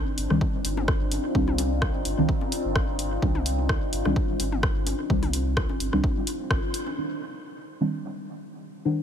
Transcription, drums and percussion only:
0.18 open hi-hat medium
0.30 cross-stick soft
0.30 high conga soft
0.41 kick loud
0.65 open hi-hat medium
0.77 mid tom medium
0.77 high conga medium
0.88 kick loud
0.88 cross-stick medium
1.12 open hi-hat medium
1.12 high conga soft
1.35 kick loud
1.48 mid tom medium
1.58 open hi-hat medium
1.58 high conga medium
1.82 kick loud
1.82 cross-stick medium
1.95 high conga soft
2.05 open hi-hat medium
2.29 kick loud
2.41 high conga medium
2.52 open hi-hat medium
2.76 kick loud
2.76 cross-stick medium
2.76 high conga soft
2.99 open hi-hat medium
3.22 kick loud
3.22 high conga medium
3.35 mid tom medium
3.46 open hi-hat medium
3.59 high conga soft
3.69 kick loud
3.69 cross-stick medium
3.93 open hi-hat medium
4.05 cross-stick soft
4.05 high conga medium
4.16 kick loud
4.40 open hi-hat medium
4.40 high conga soft
4.52 mid tom medium
4.63 kick loud
4.63 cross-stick medium
4.87 open hi-hat medium
4.87 high conga medium
5.10 kick loud
5.23 open hi-hat soft
5.23 mid tom medium
5.23 high conga soft
5.33 open hi-hat medium
5.57 kick loud
5.57 cross-stick medium
5.70 high conga medium
5.80 open hi-hat medium
5.93 cross-stick soft
6.04 kick loud
6.04 high conga soft
6.27 open hi-hat medium
6.51 kick loud
6.51 cross-stick medium
6.51 high conga medium
6.74 open hi-hat medium
6.87 high conga soft

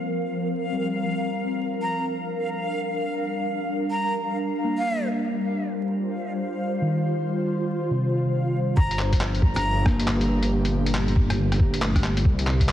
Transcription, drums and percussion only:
8.77 kick loud
8.91 closed hi-hat soft
8.99 clap medium
9.12 kick medium
9.12 closed hi-hat medium
9.21 clap loud
9.35 closed hi-hat soft
9.42 kick loud
9.56 cross-stick medium
9.56 closed hi-hat medium
9.86 kick loud
9.86 cross-stick medium
10.00 closed hi-hat medium
10.08 cross-stick soft
10.08 clap loud
10.21 closed hi-hat soft
10.43 closed hi-hat medium
10.65 closed hi-hat soft
10.86 closed hi-hat medium
10.95 clap loud
11.08 closed hi-hat soft
11.16 kick loud
11.30 cross-stick medium
11.30 closed hi-hat medium
11.52 cross-stick soft
11.52 closed hi-hat soft
11.60 kick loud
11.74 closed hi-hat medium
11.82 clap loud
11.95 kick medium
11.95 cross-stick medium
11.95 closed hi-hat soft
12.04 clap medium
12.17 closed hi-hat medium
12.25 kick loud
12.39 closed hi-hat soft
12.47 clap medium
12.60 kick medium
12.60 closed hi-hat medium
12.69 clap loud

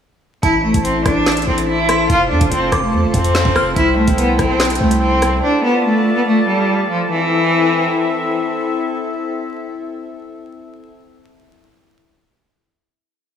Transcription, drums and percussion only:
0.43 kick loud
0.43 closed hi-hat medium
0.74 kick loud
0.74 closed hi-hat medium
0.85 closed hi-hat medium
1.06 kick medium
1.06 cross-stick loud
1.06 closed hi-hat medium
1.26 finger snap medium
1.26 snare loud
1.26 closed hi-hat medium
1.32 closed hi-hat medium
1.37 closed hi-hat medium
1.42 closed hi-hat medium
1.58 closed hi-hat medium
1.89 cross-stick medium
1.89 closed hi-hat medium
2.10 kick loud
2.10 closed hi-hat medium
2.41 kick loud
2.41 closed hi-hat medium
2.52 closed hi-hat medium
2.72 kick medium
2.72 cross-stick loud
2.72 closed hi-hat medium
3.14 kick loud
3.14 closed hi-hat medium
3.25 closed hi-hat medium
3.35 finger snap loud
3.35 snare loud
3.45 kick loud
3.56 cross-stick loud
3.76 kick loud
3.76 closed hi-hat medium
4.07 kick loud
4.07 closed hi-hat medium
4.18 closed hi-hat medium
4.39 kick medium
4.39 cross-stick medium
4.39 closed hi-hat medium
4.60 finger snap medium
4.60 snare loud
4.60 closed hi-hat medium
4.65 closed hi-hat medium
4.70 closed hi-hat medium
4.75 closed hi-hat medium
4.91 closed hi-hat medium
5.22 cross-stick medium
5.22 closed hi-hat medium

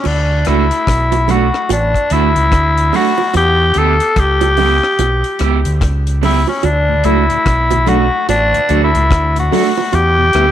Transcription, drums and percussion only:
0.04 crash loud
0.04 high bongo medium
0.45 cross-stick medium
0.45 closed hi-hat medium
0.71 closed hi-hat medium
0.87 kick loud
0.87 cross-stick loud
0.87 closed hi-hat loud
1.12 closed hi-hat medium
1.12 high bongo medium
1.28 closed hi-hat medium
1.28 low bongo medium
1.54 cross-stick medium
1.69 closed hi-hat loud
1.69 high bongo medium
1.94 kick medium
1.94 closed hi-hat soft
2.10 closed hi-hat medium
2.36 closed hi-hat medium
2.52 kick loud
2.52 cross-stick loud
2.52 closed hi-hat medium
2.78 closed hi-hat medium
2.93 open hi-hat medium
2.93 low bongo medium
3.18 high bongo medium
3.34 closed hi-hat medium
3.34 high bongo medium
3.74 closed hi-hat medium
4.00 closed hi-hat medium
4.16 kick loud
4.16 cross-stick loud
4.16 closed hi-hat loud
4.41 closed hi-hat medium
4.41 high bongo medium
4.57 open hi-hat medium
4.57 low bongo medium
4.83 cross-stick medium
4.99 closed hi-hat medium
4.99 high bongo medium
5.24 closed hi-hat soft
5.39 cross-stick medium
5.39 closed hi-hat medium
5.65 closed hi-hat medium
5.81 kick loud
5.81 cross-stick loud
5.81 closed hi-hat medium
6.07 closed hi-hat medium
6.23 open hi-hat medium
6.23 low bongo medium
6.47 high bongo medium
6.63 closed hi-hat medium
6.63 high bongo medium
7.04 closed hi-hat medium
7.30 closed hi-hat soft
7.46 kick loud
7.46 cross-stick loud
7.46 closed hi-hat loud
7.71 closed hi-hat medium
7.71 high bongo medium
7.87 closed hi-hat medium
7.87 low bongo medium
8.29 closed hi-hat medium
8.29 high bongo medium
8.54 closed hi-hat soft
8.69 closed hi-hat medium
8.95 closed hi-hat medium
9.11 kick loud
9.11 cross-stick loud
9.11 closed hi-hat loud
9.36 closed hi-hat medium
9.52 open hi-hat medium
9.52 low bongo medium
9.77 high bongo medium
9.93 closed hi-hat medium
9.93 high bongo medium
10.33 cross-stick medium
10.33 closed hi-hat medium

